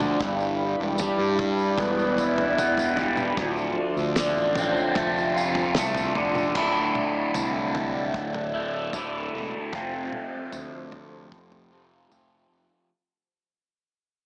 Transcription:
Already playing: fingered electric bass D2, overdriven electric guitar D3 A3 C4 F4, string machine F3 D5 A5 C6
0.00 mid tom, tambourine
0.20 fingered electric bass G1, overdriven electric guitar G2, string machine E4 D5 G5 B5, kick, floor tom, tambourine
0.40 tambourine
0.80 fingered electric bass E1
0.98 overdriven electric guitar G3, floor tom, tambourine
1.19 fingered electric bass G2
1.39 overdriven electric guitar D4, kick, floor tom, mid tom
1.59 tambourine
1.78 fingered electric bass E1, overdriven electric guitar B3, kick, floor tom, tambourine
1.99 tambourine
2.18 overdriven electric guitar E4, kick, tambourine
2.38 floor tom
2.58 overdriven electric guitar B3, floor tom, mid tom, tambourine
2.77 floor tom, tambourine
2.97 overdriven electric guitar G3, floor tom, tambourine
3.17 mid tom, tambourine
3.37 fingered electric bass D1, overdriven electric guitar D2, string machine F4 A5 C6, kick, floor tom, tambourine
3.58 tambourine
3.97 fingered electric bass D2, tambourine
4.16 overdriven electric guitar D3, snare, floor tom, tambourine
4.37 fingered electric bass A1, tambourine
4.55 overdriven electric guitar C4, floor tom, mid tom, tambourine
4.77 tambourine
4.95 fingered electric bass F1, overdriven electric guitar A3, kick, floor tom, tambourine
5.18 tambourine
5.36 overdriven electric guitar F4, tambourine
5.55 floor tom, tambourine
5.75 fingered electric bass C2, overdriven electric guitar A3, snare, floor tom, tambourine
5.95 floor tom, mid tom, tambourine
6.15 fingered electric bass F1, overdriven electric guitar D3, floor tom
6.35 mid tom, tambourine
6.54 fingered electric bass D1, overdriven electric guitar D2 A2 D3 A3 E4, string machine D5 E5 A5, kick, floor tom, crash
6.95 mid tom
7.34 fingered electric bass C2, floor tom, tambourine
7.75 floor tom
8.14 fingered electric bass D1, kick
8.34 floor tom
8.54 overdriven electric guitar D2 A2 D3 A3 E4
8.93 fingered electric bass D1, overdriven electric guitar D2 A2 D3 A3 E4, floor tom, tambourine
9.34 fingered electric bass E1
9.73 fingered electric bass F1, overdriven electric guitar F2 C3 F3 A3 C4 F4, string machine F4 A4 C5, kick, floor tom
10.13 mid tom
10.53 fingered electric bass D2, floor tom, tambourine
10.92 floor tom
11.32 fingered electric bass F1, kick
11.52 floor tom
11.71 overdriven electric guitar F2 C3 F3 A3 C4 F4
12.10 fingered electric bass F1, overdriven electric guitar F2 C3 F3 A3 C4 F4, floor tom, tambourine
12.51 fingered electric bass F1

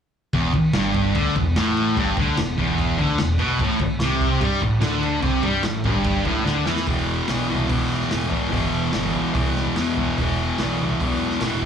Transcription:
0.33 picked electric bass E1, distorted electric guitar E2, kick, crash
0.53 muted distorted electric guitar stroke, muted picked electric bass stroke, kick, crash
0.73 picked electric bass G1, distorted electric guitar G2, snare, crash
0.94 kick, crash
1.14 picked electric bass D2, distorted electric guitar D3, kick, crash
1.35 picked electric bass E1, distorted electric guitar E2, kick, crash
1.56 picked electric bass A1, distorted electric guitar A2, snare, crash
1.77 crash
1.96 picked electric bass G1, distorted electric guitar G2, kick, crash
2.17 picked electric bass D2, distorted electric guitar D3, kick, crash
2.36 picked electric bass E1, distorted electric guitar E2, snare, crash
2.58 picked electric bass E1, distorted electric guitar E2, kick, crash
2.78 kick, crash
2.97 picked electric bass D2, distorted electric guitar D3, kick, crash
3.18 picked electric bass E1, distorted electric guitar E2, snare, crash
3.38 picked electric bass B1, distorted electric guitar B2, crash
3.59 picked electric bass A1, distorted electric guitar A2, kick, crash
3.79 muted picked electric bass stroke, muted distorted electric guitar stroke, kick, crash
3.99 picked electric bass C2, distorted electric guitar C3, snare, crash
4.21 kick, crash
4.40 picked electric bass G2, distorted electric guitar G3, kick, crash
4.61 picked electric bass A1, distorted electric guitar A2, kick, crash
4.81 picked electric bass D2, distorted electric guitar D3, snare, crash
5.03 crash
5.22 picked electric bass C2, distorted electric guitar C3, kick, crash
5.43 picked electric bass G2, distorted electric guitar G3, kick, crash
5.62 picked electric bass A1, distorted electric guitar A2, snare, crash
5.84 picked electric bass G1, distorted electric guitar G2, kick, crash
6.04 kick, crash
6.25 picked electric bass A1, distorted electric guitar A2, kick, crash
6.45 picked electric bass D2, distorted electric guitar D3, snare
6.66 picked electric bass E2, distorted electric guitar E3, snare
6.77 snare
6.86 picked electric bass E1, distorted electric guitar E2 B2 E3, kick, open hi-hat
7.28 picked electric bass B1, distorted electric guitar E2 B2 E3, snare, open hi-hat
7.50 picked electric bass C2, distorted electric guitar B2 E3
7.68 picked electric bass B1, distorted electric guitar E2 B2, kick, open hi-hat
7.72 distorted electric guitar E3
7.90 snare
8.01 snare
8.11 picked electric bass A1, distorted electric guitar E2 B2 E3, snare, open hi-hat
8.29 distorted electric guitar B2 E3, kick
8.50 picked electric bass G1, distorted electric guitar E2 B2 E3, kick, open hi-hat
8.73 picked electric bass E1
8.92 picked electric bass G1, distorted electric guitar E2 B2, snare, open hi-hat
8.97 distorted electric guitar E3
9.12 picked electric bass B1, distorted electric guitar B2 E3
9.34 picked electric bass C2, distorted electric guitar E2 B2 E3, kick, open hi-hat
9.56 snare
9.76 picked electric bass E2, distorted electric guitar E2 B2, snare, open hi-hat
9.80 distorted electric guitar E3
9.97 distorted electric guitar B2 E3, kick
10.18 picked electric bass E1, distorted electric guitar E2 B2, kick, open hi-hat
10.23 distorted electric guitar E3
10.58 picked electric bass B1, distorted electric guitar E2, snare, open hi-hat
10.63 distorted electric guitar B2 E3
10.81 picked electric bass C2, distorted electric guitar B2 E3
11.00 picked electric bass B1, distorted electric guitar E2, kick, open hi-hat
11.04 distorted electric guitar B2 E3
11.31 snare
11.41 picked electric bass A1, distorted electric guitar E2, snare, open hi-hat
11.46 distorted electric guitar B2 E3
11.62 kick

